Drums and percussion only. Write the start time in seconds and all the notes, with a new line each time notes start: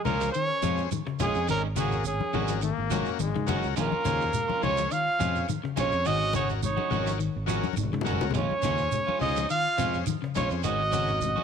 0.05 low conga, shekere
0.21 cajon slap, shekere
0.34 high conga, shekere
0.62 cajon bass, cajon slap, low conga, shekere
0.78 cajon bass, cajon slap, shekere
0.91 cajon slap, high conga, shekere
1.07 cajon slap
1.20 cajon bass, cajon slap, high conga, low conga, shekere
1.35 cajon slap, shekere
1.48 cajon bass, high conga, shekere
1.64 cajon slap
1.76 cajon bass, high conga, shekere
1.92 cajon bass, cajon slap, shekere
2.05 cajon slap, shekere
2.20 cajon slap, high conga
2.33 low conga, shekere
2.48 cajon slap, high conga, shekere
2.62 high conga, shekere
2.78 cajon slap
2.91 cajon bass, cajon slap, low conga, shekere
3.05 cajon bass, shekere
3.19 high conga, shekere
3.35 cajon slap, high conga
3.47 cajon bass, high conga, low conga, shekere
3.63 shekere
3.77 cajon bass, shekere
3.92 cajon slap, high conga
4.05 cajon bass, cajon slap, high conga, shekere
4.21 cajon bass, shekere
4.33 low conga, shekere
4.50 high conga
4.63 low conga, shekere
4.77 cajon slap, high conga, shekere
4.91 cajon slap, high conga, shekere
5.20 cajon bass, cajon slap, low conga, shekere
5.36 cajon bass, shekere
5.49 high conga, shekere
5.65 cajon slap
5.77 cajon bass, high conga, low conga, shekere
5.92 cajon slap, shekere
6.05 cajon bass, high conga, shekere
6.33 cajon bass, cajon slap, high conga, shekere
6.49 cajon bass, cajon slap, shekere
6.63 low conga, shekere
6.78 high conga
6.91 low conga, shekere
7.07 cajon slap, high conga, shekere
7.20 cajon slap, high conga, shekere
7.37 cajon slap
7.48 cajon slap, shekere
7.63 cajon bass, cajon slap, high conga, shekere
7.73 high conga, shekere
7.83 low conga
7.93 cajon slap, high conga
8.01 low conga
8.06 cajon bass, shekere
8.11 low conga
8.21 low conga, shekere
8.31 low conga, shekere
8.35 cajon bass, high conga
8.51 cajon slap, high conga
8.62 cajon bass, cajon slap, high conga, shekere
8.78 cajon bass, shekere
8.92 low conga, shekere
9.08 cajon slap, high conga
9.21 low conga, shekere
9.37 cajon slap, shekere
9.50 high conga, shekere
9.78 cajon bass, cajon slap, low conga, shekere
9.94 cajon bass, cajon slap, shekere
10.06 cajon slap, high conga, shekere
10.24 cajon slap
10.35 cajon bass, high conga, low conga, shekere
10.50 shekere
10.64 cajon bass, shekere
10.80 cajon slap
10.93 cajon bass, high conga, shekere
11.07 cajon bass, cajon slap, shekere
11.21 low conga, shekere
11.38 high conga